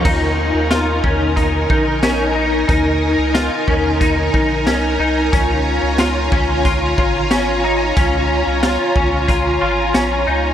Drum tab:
CC |x-------|--------|--------|--------|
HH |--x-x-x-|x-x-x-x-|x-x-x-x-|x-x-x-x-|
TB |--x---x-|--x---x-|--x---x-|--x---x-|
SD |--o---o-|--o---o-|--o---o-|--o---o-|
BD |o--ooo--|o--ooo--|o--ooo--|o--oo---|